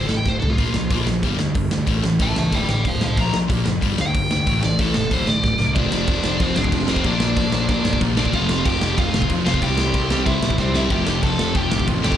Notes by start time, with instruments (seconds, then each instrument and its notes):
0.06 picked electric bass A1, distorted electric guitar D2 A2, lead electric guitar A4, snare
0.17 lead electric guitar G5
0.25 picked electric bass D1, distorted electric guitar D2 A2, lead electric guitar C5, kick, snare
0.39 picked electric bass C2, distorted electric guitar D2 A2, lead electric guitar A4, floor tom
0.50 lead electric guitar F4
0.58 picked electric bass A#1, distorted electric guitar A#2 F3 A#3, kick, open hi-hat
0.74 picked electric bass A#1, distorted electric guitar A#2 F3, snare
0.90 picked electric bass A#1, distorted electric guitar A#2 F3 A#3, kick, open hi-hat
1.07 picked electric bass A#1, distorted electric guitar A#2 F3, snare
1.22 picked electric bass G1, distorted electric guitar G2 D3 G3, kick, open hi-hat
1.39 picked electric bass D2, distorted electric guitar G2 D3, snare
1.55 picked electric bass G1, distorted electric guitar G2 D3, kick, open hi-hat
1.71 picked electric bass D2, distorted electric guitar G2 D3, snare
1.87 picked electric bass A1, distorted electric guitar A2 E3 A3, kick, open hi-hat
2.03 picked electric bass A1, distorted electric guitar A2 E3, snare
2.19 picked electric bass A1, distorted electric guitar A2 E3 A3, lead electric guitar E5 A5, kick, open hi-hat
2.36 picked electric bass C#2, distorted electric guitar A2 E3, lead electric guitar E5 A5, snare
2.52 picked electric bass D1, distorted electric guitar D2 A2 D3, lead electric guitar D5 G5, kick, open hi-hat
2.68 picked electric bass A1, distorted electric guitar D2 A2, lead electric guitar D5 G5, snare
2.85 picked electric bass D1, distorted electric guitar D2 A2, lead electric guitar C5 F5, kick, open hi-hat
3.01 picked electric bass C2, distorted electric guitar D2 A2, lead electric guitar C5 F5, snare
3.17 picked electric bass A#1, distorted electric guitar A#2 F3 A#3, lead electric guitar A#5, kick, open hi-hat
3.34 picked electric bass A#1, distorted electric guitar A#2 F3, snare
3.50 picked electric bass A#1, distorted electric guitar A#2 F3 A#3, kick, open hi-hat
3.66 picked electric bass F#1, distorted electric guitar A#2 F3, snare
3.82 picked electric bass G1, distorted electric guitar G2 D3 G3, kick, open hi-hat
3.98 picked electric bass D2, distorted electric guitar G2 D3, lead electric guitar G5, snare
4.15 picked electric bass G1, distorted electric guitar G2 D3, kick, open hi-hat
4.30 picked electric bass D2, distorted electric guitar G2 D3, snare
4.46 picked electric bass A1, distorted electric guitar A2 E3 A3, kick, open hi-hat
4.63 picked electric bass A1, distorted electric guitar A2 E3, lead electric guitar D5, snare
4.78 picked electric bass A1, distorted electric guitar A2 E3 A3, lead electric guitar A4, kick, open hi-hat
4.94 picked electric bass E1, distorted electric guitar A2 E3, lead electric guitar A4, snare
5.10 picked electric bass D1, distorted electric guitar D2 A2 D3, lead electric guitar C5, kick, open hi-hat
5.26 picked electric bass A1, distorted electric guitar D2 A2, lead electric guitar D5, snare
5.43 picked electric bass D1, distorted electric guitar D2 A2, kick, snare
5.59 picked electric bass C2, distorted electric guitar D2 A2, snare
5.74 picked electric bass F1, distorted electric guitar F2 C3 F3, lead electric guitar D4 D5, kick, crash
5.92 snare
6.07 picked electric bass F1, overdriven electric guitar F2 C3 F3, kick, crash
6.23 distorted electric guitar F2 C3 F3, snare
6.40 picked electric bass F1, overdriven electric guitar F2 C3 F3, lead electric guitar C4 C5, kick, crash
6.56 picked electric bass D1, lead electric guitar D4 D5, snare
6.64 kick
6.72 picked electric bass F1, distorted electric guitar F2 C3 F3, kick, crash
6.87 distorted electric guitar F2 C3 F3, overdriven electric guitar F2 C3 F3, lead electric guitar C4 C5, snare
6.96 kick
7.04 picked electric bass A#1, distorted electric guitar A#2 F3 A#3, lead electric guitar D4 D5, kick, crash
7.20 snare
7.37 picked electric bass A#1, overdriven electric guitar A#2 F3 A#3, kick, crash
7.52 distorted electric guitar A#2 F3 A#3, snare
7.69 picked electric bass A#1, overdriven electric guitar A#2 F3 A#3, lead electric guitar D4 D5, kick, crash
7.85 picked electric bass G1, snare
7.93 kick
8.00 picked electric bass A#1, distorted electric guitar A#2 F3 A#3, kick, crash
8.16 overdriven electric guitar A#2 F3 A#3, distorted electric guitar A#2 F3 A#3, lead electric guitar D4 D5, snare
8.25 kick
8.32 picked electric bass F1, distorted electric guitar F2 C3 F3, lead electric guitar F4 F5, kick, crash
8.49 snare
8.65 picked electric bass F1, overdriven electric guitar F2 C3 F3, lead electric guitar G4 G5, kick, crash
8.80 distorted electric guitar F2 C3 F3, snare
8.97 picked electric bass F1, overdriven electric guitar F2 C3 F3, lead electric guitar F4 F5, kick, crash
9.14 picked electric bass D1, snare
9.22 kick
9.29 picked electric bass F1, distorted electric guitar F2 C3 F3, kick, crash
9.44 overdriven electric guitar F2 C3 F3, distorted electric guitar F2 C3 F3, lead electric guitar F4 F5, snare
9.54 kick
9.61 picked electric bass C2, distorted electric guitar C3 G3 C4, lead electric guitar G4 G5, kick, crash
9.78 snare
9.93 picked electric bass C2, overdriven electric guitar C3 G3 C4, kick, crash
10.08 distorted electric guitar C3 G3 C4, snare
10.26 picked electric bass C2, overdriven electric guitar C3 G3 C4, lead electric guitar E4 E5, kick, crash
10.42 picked electric bass A#1, snare
10.50 kick
10.58 picked electric bass C2, distorted electric guitar C3 G3 C4, lead electric guitar C4 C5, kick, snare
10.74 overdriven electric guitar C3 G3 C4, distorted electric guitar C3 G3 C4, lead electric guitar E4 E5, snare
10.90 picked electric bass F1, distorted electric guitar F2 C3 F3, lead electric guitar G4 G5, kick, crash
11.07 snare
11.23 picked electric bass F1, overdriven electric guitar F2 C3 F3, lead electric guitar A4 A5, kick, crash
11.38 distorted electric guitar F2 C3 F3, snare
11.55 picked electric bass F1, overdriven electric guitar F2 C3 F3, lead electric guitar G4 G5, kick, crash
11.71 picked electric bass D1, snare
11.79 kick
11.87 picked electric bass A1, distorted electric guitar F2 C3 F3, kick, crash
12.02 distorted electric guitar F2 C3 F3, overdriven electric guitar C3 F3, lead electric guitar G4 G5, snare
12.06 overdriven electric guitar F2
12.12 kick